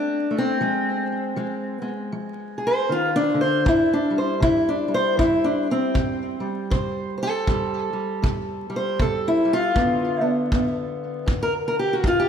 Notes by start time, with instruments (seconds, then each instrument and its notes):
Already playing: steel-string acoustic guitar F2 A3 D4
0.31 steel-string acoustic guitar A3
0.38 steel-string acoustic guitar C4
0.61 steel-string acoustic guitar F3 G#3
1.36 steel-string acoustic guitar F3 G#3
1.82 steel-string acoustic guitar G#3
2.12 steel-string acoustic guitar F3
2.58 steel-string acoustic guitar G#4
2.67 steel-string acoustic guitar C5
2.89 steel-string acoustic guitar D#3 F4
3.16 steel-string acoustic guitar D4
3.34 steel-string acoustic guitar D3
3.41 steel-string acoustic guitar C5
3.65 steel-string acoustic guitar C3 E4, kick
3.93 steel-string acoustic guitar D4
4.10 steel-string acoustic guitar G3
4.18 steel-string acoustic guitar C5
4.40 steel-string acoustic guitar C3 E4, kick
4.69 steel-string acoustic guitar D4
4.88 steel-string acoustic guitar G3
4.94 steel-string acoustic guitar C5
5.17 steel-string acoustic guitar C3 E4, kick
5.44 steel-string acoustic guitar D4
5.71 steel-string acoustic guitar C4
5.94 steel-string acoustic guitar C3, kick
6.40 steel-string acoustic guitar G3
6.70 steel-string acoustic guitar C3 C5, kick
7.18 steel-string acoustic guitar C5
7.23 steel-string acoustic guitar A4
7.47 steel-string acoustic guitar C3 G3, kick
7.93 steel-string acoustic guitar G3
8.22 steel-string acoustic guitar C3, kick
8.70 steel-string acoustic guitar G3
8.76 steel-string acoustic guitar C5
8.99 steel-string acoustic guitar C3 A4, kick
9.28 steel-string acoustic guitar E4
9.45 steel-string acoustic guitar G3
9.53 steel-string acoustic guitar F4
9.75 steel-string acoustic guitar G2 D3 B3, kick
10.21 steel-string acoustic guitar B3
10.52 steel-string acoustic guitar G2 B3, kick
11.26 steel-string acoustic guitar G2, kick
11.43 steel-string acoustic guitar A#4
11.68 steel-string acoustic guitar A#4
11.79 steel-string acoustic guitar G4
11.93 steel-string acoustic guitar F#4
12.03 steel-string acoustic guitar G2, kick
12.07 steel-string acoustic guitar F4
12.20 steel-string acoustic guitar G4